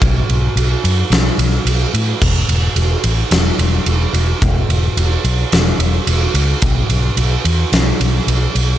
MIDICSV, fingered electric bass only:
0, 0, Header, 1, 2, 480
1, 0, Start_track
1, 0, Tempo, 550964
1, 10, Time_signature, 4, 2, 24, 8
1, 7653, End_track
2, 0, Start_track
2, 0, Title_t, "Fingered electric bass"
2, 0, Program_c, 0, 33
2, 16, Note_on_c, 0, 35, 104
2, 174, Note_off_c, 0, 35, 0
2, 253, Note_on_c, 0, 35, 88
2, 412, Note_off_c, 0, 35, 0
2, 484, Note_on_c, 0, 35, 93
2, 646, Note_off_c, 0, 35, 0
2, 732, Note_on_c, 0, 42, 86
2, 891, Note_off_c, 0, 42, 0
2, 959, Note_on_c, 0, 35, 95
2, 1122, Note_off_c, 0, 35, 0
2, 1200, Note_on_c, 0, 35, 86
2, 1363, Note_off_c, 0, 35, 0
2, 1438, Note_on_c, 0, 35, 95
2, 1602, Note_off_c, 0, 35, 0
2, 1687, Note_on_c, 0, 45, 88
2, 1847, Note_off_c, 0, 45, 0
2, 1934, Note_on_c, 0, 28, 96
2, 2092, Note_off_c, 0, 28, 0
2, 2163, Note_on_c, 0, 28, 90
2, 2325, Note_off_c, 0, 28, 0
2, 2401, Note_on_c, 0, 28, 91
2, 2563, Note_off_c, 0, 28, 0
2, 2647, Note_on_c, 0, 33, 86
2, 2807, Note_off_c, 0, 33, 0
2, 2882, Note_on_c, 0, 28, 102
2, 3044, Note_off_c, 0, 28, 0
2, 3122, Note_on_c, 0, 28, 90
2, 3284, Note_off_c, 0, 28, 0
2, 3364, Note_on_c, 0, 28, 88
2, 3525, Note_off_c, 0, 28, 0
2, 3600, Note_on_c, 0, 28, 84
2, 3762, Note_off_c, 0, 28, 0
2, 3852, Note_on_c, 0, 28, 102
2, 4010, Note_off_c, 0, 28, 0
2, 4082, Note_on_c, 0, 28, 89
2, 4244, Note_off_c, 0, 28, 0
2, 4328, Note_on_c, 0, 28, 87
2, 4488, Note_off_c, 0, 28, 0
2, 4568, Note_on_c, 0, 35, 95
2, 4728, Note_off_c, 0, 35, 0
2, 4813, Note_on_c, 0, 28, 100
2, 4971, Note_off_c, 0, 28, 0
2, 5040, Note_on_c, 0, 28, 95
2, 5202, Note_off_c, 0, 28, 0
2, 5287, Note_on_c, 0, 28, 92
2, 5447, Note_off_c, 0, 28, 0
2, 5523, Note_on_c, 0, 37, 83
2, 5685, Note_off_c, 0, 37, 0
2, 5770, Note_on_c, 0, 35, 108
2, 5930, Note_off_c, 0, 35, 0
2, 6005, Note_on_c, 0, 35, 90
2, 6167, Note_off_c, 0, 35, 0
2, 6244, Note_on_c, 0, 35, 92
2, 6406, Note_off_c, 0, 35, 0
2, 6486, Note_on_c, 0, 40, 86
2, 6647, Note_off_c, 0, 40, 0
2, 6727, Note_on_c, 0, 35, 94
2, 6888, Note_off_c, 0, 35, 0
2, 6970, Note_on_c, 0, 35, 86
2, 7130, Note_off_c, 0, 35, 0
2, 7205, Note_on_c, 0, 35, 95
2, 7367, Note_off_c, 0, 35, 0
2, 7449, Note_on_c, 0, 35, 85
2, 7610, Note_off_c, 0, 35, 0
2, 7653, End_track
0, 0, End_of_file